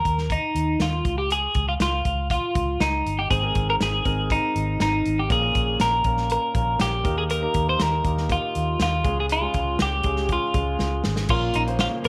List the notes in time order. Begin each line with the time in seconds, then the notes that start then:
Already playing: A#4
0.05 D#2, kick, closed hi-hat
0.18 snare
0.30 D#4, kick, closed hi-hat
0.55 D#2, closed hi-hat
0.80 D#2 F4, snare, closed hi-hat
1.05 C#2, kick, closed hi-hat
1.18 G4
1.30 G#4, closed hi-hat
1.54 C#2, kick, closed hi-hat
1.69 F4
1.80 C#2 F4, snare, closed hi-hat
2.05 C#2, kick, closed hi-hat
2.30 F4, kick, closed hi-hat
2.55 C#2, kick, closed hi-hat
2.80 C#2 D#4, snare, closed hi-hat
3.06 G1, closed hi-hat
3.19 G4
3.30 G#1 G#2 C4 D#4 G#4 C5, kick, closed hi-hat
3.42 C4 D#4 G#4 A#4
3.55 G#1, kick, closed hi-hat
3.70 A#4
3.80 G#1 G#4, snare, closed hi-hat
4.04 G#1 C4 D#4 G#4 A#4, kick, closed hi-hat
4.30 D#4, kick, closed hi-hat
4.56 G#1, closed hi-hat
4.80 G#1 D#4, snare, closed hi-hat
5.05 G#1, closed hi-hat
5.19 G4
5.29 A#1 A#2 A#3 C#4 F4 G#4 A#4, kick, closed hi-hat
5.41 A#3 C#4 F4 A#4
5.55 A#1, kick, closed hi-hat
5.80 A#1 A#4, snare, closed hi-hat
6.04 A#1 A#3 C#4 F4 A#4, kick, closed hi-hat
6.17 snare
6.29 A#4, closed hi-hat
6.54 A#1 A#3 C#4 F4 A#4, kick, closed hi-hat
6.80 A#1 G4, snare, closed hi-hat
7.04 D#2 D#3 A#3 D#4 G4 A#4, kick, closed hi-hat
7.18 G#4
7.30 A#4, closed hi-hat
7.41 A#3 D#4 G4 A#4
7.54 D#2, kick, closed hi-hat
7.69 C5
7.79 D#2 A#4, snare, closed hi-hat
8.03 D#2 A#3 D#4 G4 A#4, kick, closed hi-hat
8.17 snare
8.30 F4, kick, closed hi-hat
8.55 D#2, closed hi-hat
8.80 D#2 F4, snare, closed hi-hat
9.04 C#2 C#3 G#3 C#4 F4 G#4, kick, closed hi-hat
9.20 G#4
9.29 F4, closed hi-hat
9.41 G#3 C#4 F4 G#4
9.54 C#2, kick, closed hi-hat
9.79 C#2 G4, snare, closed hi-hat
10.03 C#2 G#3 C#4 F4 G#4, kick, closed hi-hat
10.16 snare
10.29 kick, closed hi-hat
10.33 F4
10.54 C#2 G#3 C#4 F4 G#4, kick, closed hi-hat
10.79 C#2, snare
11.04 G#1, snare
11.16 snare
11.29 A#1 A#2 C#3 F3 A#3 C#4 F4 A#4, kick, crash
11.53 A#1 D#4, closed hi-hat
11.67 A#3 C#4 F4 C5, closed hi-hat
11.79 F4, snare
12.04 A#1 A#3 C#4, closed hi-hat